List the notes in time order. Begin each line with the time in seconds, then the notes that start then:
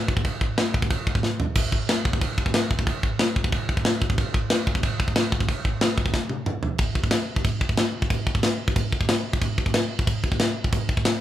0.08 kick
0.17 kick
0.25 kick, china
0.41 kick
0.58 snare, china
0.74 kick
0.82 kick
0.90 kick, china
1.07 kick
1.15 kick
1.23 snare
1.40 floor tom
1.55 kick, china, crash
1.72 kick
1.89 snare, china
2.05 kick
2.13 kick
2.21 kick, china
2.38 kick
2.46 kick
2.54 snare, china
2.71 kick
2.79 kick
2.87 kick, china
3.03 kick
3.19 snare, china
3.36 kick
3.44 kick
3.52 kick, china
3.69 kick
3.77 kick
3.85 snare, china
4.02 kick
4.10 kick
4.18 kick, china
4.34 kick
4.50 snare, china
4.67 kick
4.75 kick
4.83 kick, china
5.00 kick
5.08 kick
5.16 snare, china
5.32 kick
5.40 kick
5.48 kick, china
5.65 kick
5.81 snare, china
5.98 kick
6.06 kick
6.14 kick, snare
6.29 high tom
6.46 mid tom
6.63 floor tom
6.78 kick, crash
6.95 kick
7.04 kick
7.11 snare, crash
7.36 kick
7.45 kick, crash
7.61 kick
7.69 kick
7.77 snare, crash
8.02 kick
8.10 kick, crash
8.27 kick
8.35 kick
8.43 snare, crash
8.68 kick
8.76 kick, crash
8.92 kick
9.01 kick
9.09 snare, crash
9.33 kick
9.42 kick, crash
9.58 kick
9.66 kick
9.74 snare, crash
9.99 kick
10.07 kick, crash
10.24 kick
10.32 kick
10.40 snare, crash
10.64 kick
10.72 kick, crash
10.89 kick
10.97 kick
11.05 snare, crash